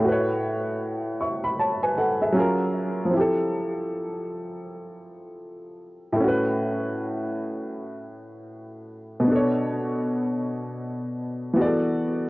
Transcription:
Already playing: A2 E4 C#5
0.01 A3 F#4
0.08 B4 C#5
1.21 E5 C#6
1.44 B5
1.59 C#5 A5
1.83 B4 G#5
1.98 A4 F#5
2.22 G#4 E5
2.32 F#3 C#4 F4
2.38 G#4 A#4
3.05 F3
3.09 C4 E4
3.17 G4 A4
6.13 A2 A3
6.20 C#4 F#4
6.28 B4
9.20 B2
9.24 B3 D4
9.31 A4
9.35 C#5
11.53 E3 B3 F#4
11.59 G#4 D5
11.66 A4

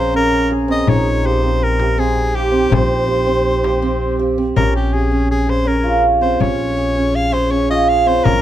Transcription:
Already playing: A#1 A#3 C#4 G#4 A#4 C5
0.14 C#4 A#4
0.32 frame drum
0.51 G#4, frame drum
0.68 C4 D#5
0.87 A#1 D#4 C#5, frame drum
1.24 G4 C5, frame drum
1.43 C4
1.63 A#4
1.80 G4, frame drum
1.98 C4 G#4
2.17 frame drum
2.35 G4, frame drum
2.52 C4
2.70 A#1 C4, frame drum
2.74 C5
3.07 G4, frame drum
3.27 C4, frame drum
3.63 G4, frame drum
3.82 C4, frame drum
4.19 G4
4.38 C4, frame drum
4.56 A#1 C#4 A#4, frame drum
4.75 G4, frame drum
4.93 G#4
5.11 C#4
5.31 G#4, frame drum
5.47 G#4 C5, frame drum
5.65 C#4 A#4
5.84 F4
6.21 C4 C5
6.40 A#1 C#4 C#5, frame drum
6.59 frame drum
6.77 G#4
6.96 C#4
7.15 F5, frame drum
7.32 G#4 C5, frame drum
7.51 C#4 C#5
7.69 F4 D#5
7.89 F5
8.06 C4 C5
8.24 A#1 C#4 A#4, frame drum

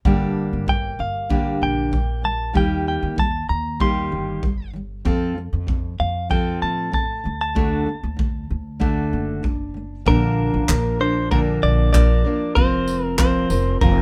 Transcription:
0.05 G1 G2 D3 G3 A#3 D4 G4, kick
0.53 G1
0.66 G2 D3 G3 G5, kick
0.99 G1 F5
1.29 G2 D3 G3 A#3 D4 G4, kick
1.62 A#1 G5
1.92 G2 D3 G3, kick
2.22 G2 D3 G3 A5
2.53 D#2 D#3 G3 A#3 D#4 G4 G5, kick
2.88 G5
3.03 D#2
3.16 D#3 G3 A5, kick
3.49 D#2 A#5
3.80 D#3 G3 A#3 D#4 G4 C6, kick
4.12 G1
4.43 D#3 G3, kick
4.73 D#3 G3
5.05 F2 F3 C4 F4 A4, kick
5.35 F3 C4
5.53 F2
5.67 F3 C4, kick
6.00 F2 F5
6.29 F3 C4 F4 A4 G5, kick
6.62 A2 A5
6.92 F3 C4 A5, kick
7.24 D2 D3 A3
7.41 A5
7.55 D3 A3 D4 F#4 A4, kick
7.86 D3 A3
8.03 D2
8.17 D3 A3, kick
8.50 D2
8.79 D3 A3 D4 F#4 A4, kick
9.13 F#1
9.43 D3 A3, kick
9.74 D3 A3
10.06 A#1 A#2 D3 F3 A#3 D4 A#4, kick
10.54 A1
10.68 A#1 F3 A#3 D4 A#4, kick, clap
10.99 F3 A#3 D4 A#4 C5
11.31 A#2 D3 F3 A#3 D4 A#4, kick
11.63 A#1 D5
11.92 F3 A#3 D4 A#4 D5, kick, clap
12.24 F3 A#3 D4 A#4
12.55 F1 F3 C4 F4 A#4 C5, kick
12.88 tambourine
13.04 A#4
13.18 F3 C4 F4 A#4 C5, kick, clap
13.50 F1 C4 F4 A#4, tambourine
13.81 F1 F3 C4 F4 A#4, kick

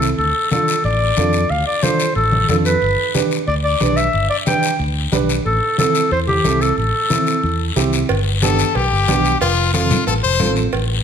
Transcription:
Already playing: C2
0.02 short guiro
0.18 D2 A4, long guiro
0.51 D4 F4 A4, high conga, short guiro
0.68 short guiro
0.84 A1 D5, long guiro
1.17 F2 D4 F4 A4, high conga, short guiro
1.33 short guiro
1.49 D2 F5, long guiro
1.67 D5
1.82 D4 F4 A4 C5, high conga, short guiro
1.99 short guiro
2.15 A1 A4, long guiro
2.32 high conga
2.49 F2 D4 F4 A4, high conga, short guiro
2.65 B4, short guiro
2.82 G1, long guiro
3.14 D4 G4 B4, high conga, short guiro
3.31 short guiro
3.47 D2 D5, long guiro
3.64 D5
3.80 B1 D4 G4 B4, high conga, short guiro
3.96 E5, short guiro
4.13 G1, long guiro
4.30 D5
4.46 D4 G4 B4 G5, high conga, short guiro
4.63 short guiro
4.79 D2, long guiro
5.12 B1 D4 G4 B4, high conga, short guiro
5.29 short guiro
5.46 A1 A4, long guiro
5.78 C4 E4 A4, high conga, short guiro
5.95 short guiro
6.11 E2 C5, long guiro
6.28 G4, high conga
6.44 C2 C4 E4 A4, high conga, short guiro
6.61 A4, short guiro
6.77 A1 A4, long guiro
7.10 C4 E4 A4, high conga, short guiro
7.27 short guiro
7.43 E2, long guiro
7.76 C2 C4 E4 G4, high conga, short guiro
7.93 short guiro
8.09 G1, cowbell, long guiro
8.42 B3 D4 G4 A4, cowbell, high conga, short guiro
8.59 short guiro
8.75 B1 G4, cowbell, long guiro
8.91 G1
9.08 B1 B3 D4 G4, cowbell, high conga, low timbale, short guiro
9.25 short guiro
9.41 F1 F4, cowbell, long guiro
9.74 C4 F4 A4, cowbell, high conga, short guiro
9.90 low conga, short guiro
10.07 A1 A4, cowbell, long guiro
10.23 F1 C5
10.39 A1 C4 F4 A4, cowbell, high conga, low conga, short guiro
10.56 short guiro
10.73 A1, cowbell, long guiro

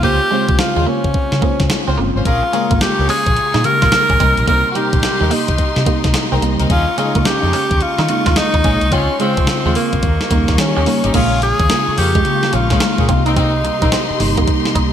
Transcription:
0.03 C#2 A#3 C#4 F4 G4 C5, kick
0.31 C#3 G#3 C4 C#4 F4 C5
0.49 C2, muted clean electric guitar stroke, kick
0.59 C#3 G#3 F4 C5, muted clean electric guitar stroke, snare
0.76 D#2 G#3 C#4 F4 C5
0.87 A#3 C#4
1.04 C#2, kick
1.14 muted fingered electric bass stroke, kick
1.32 C#3, snare
1.42 C#3 G#3 A#3 F4 C5, kick
1.60 C#2, kick, snare
1.70 muted clean electric guitar stroke, snare
1.87 C#2 C4 C#4 F4 C5
1.98 G1 C#3 G#3 A#3 C4 F4
2.15 G#1 C#4 F4 C5
2.25 A#1 G#3 C#4 F4 G#4 A#4 F5 A#5 C#6, kick, closed hi-hat
2.43 muted clean electric guitar stroke
2.53 C#3 G#3 A#3 C#4 F4 G#4 A#4, closed hi-hat
2.71 G#1 A#3, kick, closed hi-hat
2.81 C#3 G#3 A#3 F4 G4, snare, closed hi-hat
2.98 C#2 C#4 G#4 A#4
3.09 C#4 G#4, open hi-hat
3.26 A#1, kick, closed hi-hat
3.37 muted fingered electric bass stroke, closed hi-hat
3.54 A#2 D#4, snare
3.64 C#3 G#3 A#3 G4 A#4, muted clean electric guitar stroke, closed hi-hat
3.82 A#1 F4, kick, snare, closed hi-hat
3.92 muted clean electric guitar stroke, snare, closed hi-hat
4.10 A#1 C#4, kick
4.19 C2 C3 G3 A#3 C4 D#4 G4 A#4 D#5 C6, kick, closed hi-hat
4.37 A#1, closed hi-hat
4.47 C2 A#3 C4 D#4 A#4, kick, closed hi-hat
4.71 G3 C4 F#4
4.75 C3 G3 A#3 D#4 G4 A#4, closed hi-hat
4.93 A#1, muted clean electric guitar stroke, kick, closed hi-hat
5.03 C3 G3 A#3 D#4, muted clean electric guitar stroke, snare, closed hi-hat
5.21 D#2 G3 C4 D#4 A#4
5.31 A#3 D#4, open hi-hat
5.48 C2, kick, closed hi-hat
5.58 muted fingered electric bass stroke, kick, closed hi-hat
5.76 C3, snare
5.86 C3 G3 A#3 D#4, kick, closed hi-hat
6.04 C2, kick, snare, closed hi-hat
6.14 muted clean electric guitar stroke, snare, closed hi-hat
6.32 C2 C4 D#4 A#4
6.42 C2 C3 G3 A#3 D#4, closed hi-hat
6.59 C#2 C4 D#4 A#4, closed hi-hat
6.69 D#2 G#3 C#4 D#4 F4 G#4 C#6, kick, closed hi-hat
6.88 muted clean electric guitar stroke
6.97 C#3 G#3 A#3 C#4 D#4 F4 G#4, closed hi-hat
7.15 C#2 A#3, kick, closed hi-hat
7.25 C#3 G#3 A#3 C#4 G4, snare, closed hi-hat
7.33 D#4
7.43 F2 C#4 D#4 G#4
7.53 C#4, open hi-hat
7.71 D#2, kick, closed hi-hat
7.81 F4, muted fingered electric bass stroke, closed hi-hat
7.98 D#3 D#4, snare
8.09 C#3 G#3 A#3 D#4, muted clean electric guitar stroke, closed hi-hat
8.26 D#2 F4, kick, snare, closed hi-hat
8.36 D#4, muted clean electric guitar stroke, snare, closed hi-hat
8.54 D#2 D#4, kick
8.64 A#1 C#3 G#3 A#3 C#4 D#4 G#4, kick, closed hi-hat
8.81 C2, closed hi-hat
8.92 C#2 C4 C#4 F4 F5 C6, kick, closed hi-hat
9.20 C#3 G#3 C4 C#4 F4, closed hi-hat
9.37 C2, muted clean electric guitar stroke, kick, closed hi-hat
9.47 C#3 G#3 C4 F4, muted clean electric guitar stroke, snare, closed hi-hat
9.65 D#2 G#3 C4 C#4 F4
9.75 A#3, open hi-hat
9.93 C#2, kick, closed hi-hat
10.03 D#2 G4 D#5 A#5 C#6, kick, closed hi-hat
10.21 snare
10.31 D#2 C#3 G3 A#3 D#4, kick, closed hi-hat
10.48 D#2, kick, snare, closed hi-hat
10.58 D#3 C#4, muted clean electric guitar stroke, snare, closed hi-hat
10.76 D#2 C#4 D#4 G4
10.86 C#3 G3 A#3 D#4, open hi-hat
11.04 G#1 C#4 D#4 G4, closed hi-hat
11.14 A#1 C#3 G#3 A#3 C#4 F4 G#4 F5 A#5 C#6, kick, closed hi-hat, crash
11.42 G#4, muted clean electric guitar stroke, closed hi-hat
11.60 D#2 C#4, kick, closed hi-hat
11.69 C#3 G#3 A#3 F4, snare, closed hi-hat
11.88 muted fingered electric bass stroke
11.97 F2 A#3 C#4 G4 G#4, muted clean electric guitar stroke, open hi-hat
12.15 G#3, kick, closed hi-hat
12.25 C#3 G#3 A#3 F4, muted clean electric guitar stroke, closed hi-hat
12.43 snare
12.53 A#1 C#4 F4, closed hi-hat
12.70 C#3 G#3 A#3 C#4 G#4, kick, snare, closed hi-hat
12.80 muted clean electric guitar stroke, snare, closed hi-hat
12.98 A#2 A#3 C#4 G#4, kick
13.08 C2 C3 G3 A#3 C4 D#4 F4 G4 D#5 C6, kick, closed hi-hat
13.26 A#3 C4 D#4, closed hi-hat
13.36 A#3 C4 D#4, kick, closed hi-hat
13.64 C3 G3 A#3 D#4, muted clean electric guitar stroke, closed hi-hat
13.81 A#1 A#3 C4 D#4, kick, closed hi-hat
13.92 C4, snare, closed hi-hat
14.10 muted fingered electric bass stroke
14.20 G1 C3 G3 A#3 D#4, muted clean electric guitar stroke, open hi-hat
14.37 A#3, kick, closed hi-hat
14.47 muted clean electric guitar stroke, kick, closed hi-hat
14.65 C3 G3 A#3 D#4, snare
14.75 C2 D#4, kick, closed hi-hat

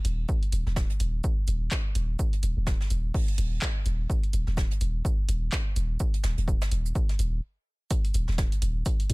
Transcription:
0.05 D#1, closed hi-hat, shaker
0.29 kick, shaker
0.43 closed hi-hat
0.52 D#1, closed hi-hat, shaker
0.66 D#1, snare
0.76 kick, snare, shaker
0.90 closed hi-hat
1.00 D#1, closed hi-hat, shaker
1.24 kick, shaker
1.47 D#1, closed hi-hat, shaker
1.71 kick, snare, clap, shaker
1.95 D#1, closed hi-hat, shaker
2.19 kick, shaker
2.33 closed hi-hat
2.43 D#1, closed hi-hat, shaker
2.57 D#1
2.67 kick, snare, shaker
2.80 snare
2.90 D#1, closed hi-hat, shaker
3.14 kick, open hi-hat
3.28 closed hi-hat
3.38 D#1, closed hi-hat, shaker
3.62 kick, snare, clap, shaker
3.85 D#1, closed hi-hat, shaker
4.10 kick, shaker
4.23 closed hi-hat
4.33 D#1, closed hi-hat, shaker
4.47 D#1, snare
4.57 kick, snare, shaker
4.71 closed hi-hat
4.81 D#1, closed hi-hat, shaker
5.05 kick, shaker
5.29 D#1, closed hi-hat, shaker
5.52 kick, snare, clap, shaker
5.76 D#1, closed hi-hat, shaker
6.00 kick, shaker
6.14 closed hi-hat
6.24 D#1, snare, closed hi-hat, shaker
6.38 D#1, closed hi-hat
6.48 kick, shaker
6.62 snare, shaker
6.71 D#1, closed hi-hat
6.86 shaker
6.95 kick, shaker
7.09 snare, closed hi-hat
7.19 D#1, closed hi-hat, shaker
7.91 kick, closed hi-hat, shaker
8.05 closed hi-hat
8.14 D#1, closed hi-hat, shaker
8.28 D#1, snare
8.38 kick, snare, closed hi-hat, shaker
8.52 closed hi-hat
8.62 D#1, closed hi-hat, shaker
8.85 kick, closed hi-hat, shaker
9.00 closed hi-hat
9.10 D#2, closed hi-hat, shaker

